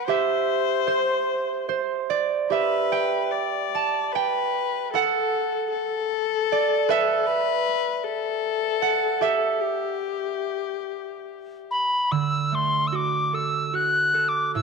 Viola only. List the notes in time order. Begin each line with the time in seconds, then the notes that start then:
0.07 C5
2.50 B4
3.31 D5
4.13 B4
4.93 A4
5.71 A4
7.26 B4
8.03 A4
9.60 G4